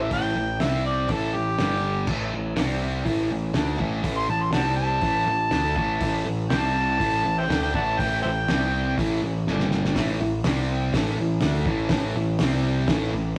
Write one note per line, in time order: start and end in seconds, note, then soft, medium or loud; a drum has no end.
0.00 0.10 A1 medium
0.00 0.11 E3 loud
0.00 0.12 A3 loud
0.00 0.13 E5 loud
0.11 0.34 A1 medium
0.11 0.35 A2 medium
0.11 0.36 E3 loud
0.11 0.36 A3 loud
0.11 0.65 G5 loud
0.11 kick loud
0.11 open hi-hat medium
0.36 0.59 A1 medium
0.36 0.57 A2 medium
0.36 0.57 E3 medium
0.60 1.07 C2 medium
0.60 1.09 C3 loud
0.60 1.10 G3 loud
0.60 1.10 C4 loud
0.60 0.85 E5 medium
0.60 snare loud
0.60 open hi-hat medium
0.86 1.10 D5 medium
1.08 1.32 A1 medium
1.08 1.34 A2 loud
1.08 1.34 E3 loud
1.08 1.35 A3 loud
1.08 1.36 A4 loud
1.08 kick loud
1.08 open hi-hat medium
1.34 1.58 A1 medium
1.34 1.55 A2 medium
1.34 1.55 E3 medium
1.34 2.06 G4 loud
1.59 2.05 G1 medium
1.59 2.08 G2 medium
1.59 2.08 D3 medium
1.59 2.08 G3 medium
1.59 snare loud
1.59 open hi-hat medium
2.07 2.31 A1 medium
2.07 2.32 A2 medium
2.07 2.33 E3 loud
2.07 2.33 A3 loud
2.07 kick loud
2.07 crash loud
2.33 2.56 A1 medium
2.33 2.56 A2 medium
2.33 2.53 E3 medium
2.56 3.03 C2 loud
2.56 3.04 C3 medium
2.56 3.05 G3 loud
2.56 3.06 C4 loud
2.56 snare loud
2.56 open hi-hat medium
3.04 3.28 A1 medium
3.04 3.29 A2 loud
3.04 3.30 E3 loud
3.04 3.30 A3 loud
3.04 kick loud
3.04 open hi-hat medium
3.31 3.54 A1 medium
3.31 3.51 A2 medium
3.31 3.51 E3 medium
3.54 3.78 D2 medium
3.54 3.78 D3 medium
3.54 3.79 A3 medium
3.54 3.80 D4 loud
3.54 snare loud
3.54 open hi-hat medium
3.78 4.02 A1 medium
3.78 4.02 A2 medium
3.78 4.02 E3 loud
3.78 4.03 A3 loud
3.78 kick loud
4.03 4.27 A1 loud
4.03 4.28 A2 medium
4.03 4.28 E3 loud
4.03 4.28 A3 loud
4.03 kick loud
4.03 open hi-hat medium
4.17 4.28 C6 loud
4.28 4.51 A1 medium
4.28 4.49 A2 medium
4.28 4.49 E3 medium
4.28 4.45 A5 loud
4.43 4.53 C6 loud
4.52 4.98 C2 loud
4.52 5.02 C3 medium
4.52 5.02 G3 loud
4.52 5.03 C4 loud
4.52 4.60 D5 medium
4.52 4.61 F#5 medium
4.52 4.76 A5 medium
4.52 snare loud
4.52 open hi-hat medium
4.76 6.21 A5 loud
5.01 5.25 A1 medium
5.01 5.27 A2 loud
5.01 5.27 E3 loud
5.01 5.28 A3 loud
5.01 kick loud
5.01 open hi-hat medium
5.26 5.50 A1 medium
5.26 5.47 A2 medium
5.26 5.48 E3 medium
5.51 5.74 D2 loud
5.51 5.76 D3 medium
5.51 5.76 A3 medium
5.51 5.77 D4 loud
5.51 snare loud
5.51 open hi-hat medium
5.76 5.99 A1 medium
5.76 6.00 A2 medium
5.76 6.01 E3 loud
5.76 6.01 A3 loud
5.76 kick loud
6.00 6.24 A1 loud
6.00 6.24 A2 medium
6.00 6.25 E3 medium
6.00 6.26 A3 loud
6.00 kick loud
6.00 open hi-hat medium
6.25 6.48 A1 medium
6.25 6.46 A2 medium
6.25 6.46 E3 medium
6.49 6.97 C2 loud
6.49 6.98 C3 medium
6.49 6.99 G3 loud
6.49 7.00 C4 loud
6.49 6.61 G5 loud
6.49 snare loud
6.49 open hi-hat medium
6.60 7.33 A5 loud
6.98 7.23 A1 loud
6.98 7.23 A2 loud
6.98 7.23 E3 loud
6.98 7.24 A3 loud
6.98 kick loud
6.98 open hi-hat medium
7.24 7.47 A1 medium
7.24 7.44 A2 medium
7.24 7.44 E3 medium
7.38 7.46 C5 medium
7.38 7.44 E5 medium
7.38 7.62 G5 loud
7.48 7.72 D2 medium
7.48 7.72 D3 medium
7.48 7.73 A3 medium
7.48 7.73 D4 loud
7.48 snare loud
7.48 open hi-hat medium
7.63 7.73 G5 loud
7.74 7.97 A1 medium
7.74 7.97 A2 medium
7.74 7.98 E3 loud
7.74 7.98 A3 loud
7.74 7.82 D5 medium
7.74 7.83 F#5 medium
7.74 8.01 A5 medium
7.74 kick loud
7.99 8.21 A1 loud
7.99 8.22 A2 loud
7.99 8.23 E3 loud
7.99 8.24 A3 loud
7.99 8.22 G5 loud
7.99 kick loud
7.99 open hi-hat medium
8.22 8.46 A1 medium
8.22 8.43 A2 medium
8.22 8.43 E3 medium
8.22 8.29 C5 medium
8.22 8.30 E5 medium
8.22 8.94 G5 loud
8.48 8.94 C2 loud
8.48 8.97 C3 loud
8.48 8.98 G3 loud
8.48 8.98 C4 loud
8.48 snare loud
8.48 open hi-hat medium
8.98 9.20 A1 loud
8.98 9.21 A2 loud
8.98 9.22 E3 loud
8.98 9.22 A3 loud
8.98 kick loud
8.98 open hi-hat medium
9.23 9.45 A1 medium
9.23 9.42 A2 medium
9.23 9.42 E3 medium
9.47 9.92 G1 loud
9.47 9.95 G2 loud
9.47 9.95 D3 medium
9.47 9.96 G3 loud
9.47 snare medium
9.59 snare medium
9.71 snare medium
9.85 snare loud
9.95 10.18 A1 medium
9.95 10.19 A2 loud
9.95 10.19 E3 loud
9.95 10.20 A3 loud
9.95 kick loud
9.95 snare loud
9.95 open hi-hat medium
10.20 10.43 A1 medium
10.20 10.40 A2 medium
10.20 10.40 E3 medium
10.44 10.90 C2 loud
10.44 10.93 C3 loud
10.44 10.93 G3 loud
10.44 10.93 C4 loud
10.44 snare loud
10.44 open hi-hat medium
10.93 11.16 A1 loud
10.93 11.17 A2 medium
10.93 11.17 E3 loud
10.93 11.18 A3 loud
10.93 kick loud
10.93 snare loud
10.93 open hi-hat medium
11.19 11.41 A1 medium
11.19 11.38 A2 medium
11.19 11.38 E3 medium
11.41 11.65 D2 loud
11.41 11.66 D3 medium
11.41 11.66 A3 medium
11.41 11.67 D4 medium
11.41 snare loud
11.41 open hi-hat medium
11.66 11.89 A1 loud
11.66 11.89 A2 loud
11.66 11.91 E3 loud
11.66 11.91 A3 loud
11.66 kick loud
11.89 12.13 A1 loud
11.89 12.14 A2 medium
11.89 12.15 E3 loud
11.89 12.15 A3 loud
11.89 kick loud
11.89 snare loud
11.89 open hi-hat medium
12.16 12.38 A1 medium
12.16 12.35 A2 medium
12.16 12.35 E3 medium
12.39 12.85 C2 loud
12.39 12.88 C3 loud
12.39 12.89 G3 loud
12.39 12.89 C4 loud
12.39 snare loud
12.39 open hi-hat medium
12.88 13.11 A1 loud
12.88 13.12 A2 loud
12.88 13.12 E3 loud
12.88 13.13 A3 loud
12.88 kick loud
12.88 snare loud
12.88 open hi-hat medium
13.13 13.36 A1 medium
13.13 13.33 A2 medium
13.13 13.33 E3 medium